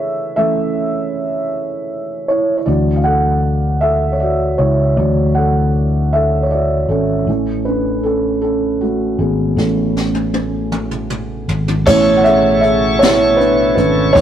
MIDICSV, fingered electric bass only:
0, 0, Header, 1, 2, 480
1, 0, Start_track
1, 0, Key_signature, 3, "major"
1, 0, Tempo, 765306
1, 235, Time_signature, 6, 3, 24, 8
1, 8914, End_track
2, 0, Start_track
2, 0, Title_t, "Fingered electric bass"
2, 0, Program_c, 0, 33
2, 1678, Note_on_c, 0, 38, 65
2, 2854, Note_off_c, 0, 38, 0
2, 2879, Note_on_c, 0, 37, 57
2, 3105, Note_off_c, 0, 37, 0
2, 3117, Note_on_c, 0, 38, 84
2, 4294, Note_off_c, 0, 38, 0
2, 4319, Note_on_c, 0, 32, 57
2, 4545, Note_off_c, 0, 32, 0
2, 4559, Note_on_c, 0, 33, 68
2, 5735, Note_off_c, 0, 33, 0
2, 5762, Note_on_c, 0, 32, 67
2, 5987, Note_off_c, 0, 32, 0
2, 6002, Note_on_c, 0, 33, 74
2, 7176, Note_off_c, 0, 33, 0
2, 7201, Note_on_c, 0, 32, 59
2, 7426, Note_off_c, 0, 32, 0
2, 7441, Note_on_c, 0, 33, 95
2, 8614, Note_off_c, 0, 33, 0
2, 8638, Note_on_c, 0, 32, 79
2, 8864, Note_off_c, 0, 32, 0
2, 8880, Note_on_c, 0, 33, 101
2, 8914, Note_off_c, 0, 33, 0
2, 8914, End_track
0, 0, End_of_file